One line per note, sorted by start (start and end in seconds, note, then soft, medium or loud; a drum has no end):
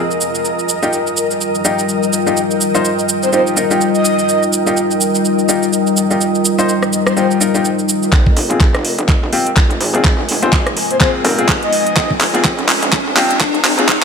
0.00 0.41 F3 medium
0.00 0.41 C4 medium
0.00 2.08 F4 medium
0.00 0.41 G#4 medium
0.00 14.04 A#4 medium
0.00 14.04 D#5 medium
0.00 0.45 G#5 medium
0.11 shaker soft
0.21 shaker medium
0.35 shaker soft
0.45 8.09 G3 medium
0.45 8.09 D#4 medium
0.45 8.09 F4 medium
0.45 shaker soft
0.59 shaker soft
0.69 8.13 G5 medium
0.69 shaker medium
0.83 0.94 D#4 medium
0.83 0.94 F4 medium
0.83 0.94 G4 medium
0.83 shaker soft
0.93 shaker soft
1.07 shaker soft
1.17 shaker medium
1.31 shaker soft
1.41 shaker soft
1.55 shaker soft
1.65 1.80 D#4 medium
1.65 1.80 F4 medium
1.65 1.80 G4 medium
1.65 shaker medium
1.79 shaker soft
1.89 shaker soft
2.03 shaker soft
2.13 shaker medium
2.27 2.38 D#4 medium
2.27 2.38 F4 medium
2.27 2.38 G4 medium
2.27 shaker soft
2.37 shaker soft
2.51 shaker soft
2.61 shaker medium
2.75 2.86 D#4 medium
2.75 2.86 F4 medium
2.75 2.86 C5 medium
2.75 shaker soft
2.85 shaker soft
2.99 shaker soft
3.09 shaker medium
3.23 3.29 C5 medium
3.23 shaker soft
3.33 3.54 D#4 medium
3.33 3.54 F4 medium
3.33 3.54 G4 medium
3.33 3.42 C5 medium
3.33 shaker soft
3.47 shaker soft
3.57 3.68 D#4 medium
3.57 3.68 F4 medium
3.57 3.68 A#4 medium
3.57 shaker medium
3.71 3.82 D#4 medium
3.71 3.82 F4 medium
3.71 3.82 G4 medium
3.71 shaker soft
3.81 shaker soft
3.94 4.43 D#5 medium
3.94 shaker soft
4.05 shaker medium
4.19 shaker soft
4.29 shaker soft
4.43 shaker soft
4.53 shaker medium
4.67 4.78 D#4 medium
4.67 4.78 F4 medium
4.67 4.78 G4 medium
4.67 shaker soft
4.77 shaker soft
4.91 shaker soft
5.01 shaker medium
5.15 shaker soft
5.25 shaker soft
5.39 shaker soft
5.49 5.64 D#4 medium
5.49 5.64 F4 medium
5.49 5.64 G4 medium
5.49 shaker medium
5.63 shaker soft
5.73 shaker soft
5.87 shaker soft
5.97 shaker medium
6.11 6.22 D#4 medium
6.11 6.22 F4 medium
6.11 6.22 G4 medium
6.11 shaker soft
6.21 shaker soft
6.35 shaker soft
6.45 shaker medium
6.59 6.70 D#4 medium
6.59 6.70 F4 medium
6.59 6.70 C5 loud
6.59 shaker soft
6.69 shaker soft
6.83 cross-stick medium
6.83 shaker soft
6.93 shaker medium
7.07 7.13 C5 medium
7.07 cross-stick medium
7.07 shaker soft
7.17 7.38 D#4 medium
7.17 7.38 F4 medium
7.17 7.38 G4 medium
7.17 7.26 C5 medium
7.17 shaker soft
7.31 shaker soft
7.41 7.52 D#4 medium
7.41 7.52 F4 medium
7.41 7.52 A#4 medium
7.41 shaker medium
7.55 7.66 D#4 medium
7.55 7.66 F4 medium
7.55 7.66 G4 medium
7.55 shaker soft
7.65 shaker soft
7.79 shaker soft
7.89 shaker medium
8.03 shaker soft
8.13 8.35 F1 loud
8.13 14.04 G#3 medium
8.13 11.93 C4 medium
8.13 14.04 F4 medium
8.13 kick loud
8.13 clap soft
8.13 closed hi-hat medium
8.13 riser medium
8.27 kick medium
8.37 8.72 F1 medium
8.37 open hi-hat loud
8.51 8.62 C4 medium
8.51 8.62 F4 medium
8.51 8.62 G#4 medium
8.51 closed hi-hat medium
8.61 kick loud
8.61 clap soft
8.61 closed hi-hat medium
8.74 8.96 F1 medium
8.74 14.04 G#5 medium
8.74 cross-stick medium
8.74 closed hi-hat soft
8.85 open hi-hat loud
8.98 9.31 F1 medium
8.98 closed hi-hat medium
9.09 kick loud
9.09 clap soft
9.09 closed hi-hat medium
9.33 9.48 C4 medium
9.33 9.48 F4 medium
9.33 9.48 G4 medium
9.33 open hi-hat loud
9.47 closed hi-hat medium
9.57 9.79 F1 loud
9.57 kick loud
9.57 clap medium
9.57 closed hi-hat medium
9.71 closed hi-hat soft
9.81 10.16 G#1 medium
9.81 open hi-hat medium
9.95 10.06 C4 medium
9.95 10.06 F4 medium
9.95 10.06 G#4 medium
9.95 closed hi-hat medium
10.05 kick loud
10.05 clap medium
10.05 closed hi-hat medium
10.19 10.51 F1 loud
10.29 open hi-hat loud
10.43 10.54 C4 medium
10.43 10.54 F4 medium
10.43 10.54 C5 loud
10.43 closed hi-hat medium
10.53 10.75 G#1 medium
10.53 kick loud
10.53 clap medium
10.53 closed hi-hat medium
10.67 cross-stick medium
10.67 closed hi-hat soft
10.77 open hi-hat loud
10.91 10.97 C5 medium
10.91 closed hi-hat medium
11.01 11.22 C4 medium
11.01 11.22 F4 medium
11.01 11.22 G#4 medium
11.01 11.10 C5 medium
11.01 kick loud
11.01 clap medium
11.01 closed hi-hat medium
11.25 11.60 F1 loud
11.25 11.36 C4 medium
11.25 11.36 F4 medium
11.25 11.36 A#4 medium
11.25 open hi-hat loud
11.39 11.50 C4 medium
11.39 11.50 F4 medium
11.39 11.50 G#4 medium
11.39 closed hi-hat medium
11.49 kick loud
11.49 clap medium
11.49 closed hi-hat medium
11.63 12.11 D#5 medium
11.63 closed hi-hat soft
11.73 open hi-hat loud
11.87 closed hi-hat medium
11.97 12.19 F1 loud
11.97 14.04 C4 medium
11.97 kick loud
11.97 clap medium
11.97 closed hi-hat medium
12.11 kick medium
12.21 12.56 F1 loud
12.21 clap medium
12.21 open hi-hat loud
12.35 12.46 C4 medium
12.35 12.46 F4 medium
12.35 12.46 G#4 medium
12.35 closed hi-hat medium
12.45 kick loud
12.45 clap medium
12.45 closed hi-hat medium
12.59 12.80 F1 medium
12.59 closed hi-hat soft
12.69 clap medium
12.69 open hi-hat loud
12.83 13.15 F1 loud
12.83 closed hi-hat medium
12.93 kick loud
12.93 clap medium
12.93 closed hi-hat medium
13.17 13.32 C4 medium
13.17 13.32 F4 medium
13.17 13.32 G4 loud
13.17 clap medium
13.17 open hi-hat loud
13.31 closed hi-hat medium
13.41 13.63 F1 loud
13.41 kick loud
13.41 clap medium
13.41 closed hi-hat medium
13.55 closed hi-hat soft
13.65 14.00 G#1 loud
13.65 clap medium
13.65 open hi-hat loud
13.79 13.90 C4 medium
13.79 13.90 F4 medium
13.79 13.90 G#4 medium
13.79 closed hi-hat medium
13.89 kick loud
13.89 clap loud
13.89 closed hi-hat medium